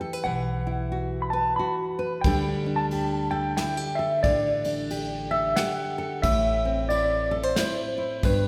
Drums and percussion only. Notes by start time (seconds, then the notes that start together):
2.24 kick, ride
2.91 ride
3.57 snare, ride
4.23 kick, ride
4.64 ride
4.90 ride
5.56 snare, ride
6.23 kick, ride
6.90 ride
7.56 snare, ride
8.23 kick, ride